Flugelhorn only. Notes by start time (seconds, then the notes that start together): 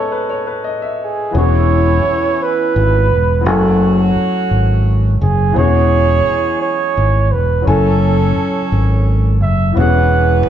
1.04 G#4
1.38 C#5
2.42 B4
3.48 A4
5.22 G#4
5.58 C#5
6.62 C#5
7.32 B4
7.67 A4
9.42 E5
9.78 F#5